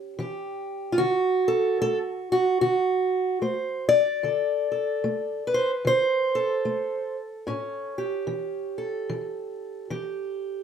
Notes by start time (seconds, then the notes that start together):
Already playing: A2 C#4 G4
0.19 E3 G4
0.92 F4
0.98 D3 F#4
1.48 A4
1.82 A3 A4
2.32 F#4
2.61 D3 F#4
3.42 A3 C5
3.89 D5
4.23 D3 A4
4.72 A4
5.04 A3
5.47 B4
5.54 C5
5.85 D3 C5
6.35 A4
6.65 A3
7.47 A2 C#4
7.98 G4
8.27 E3
8.78 A4
9.09 E3
9.90 E3 G4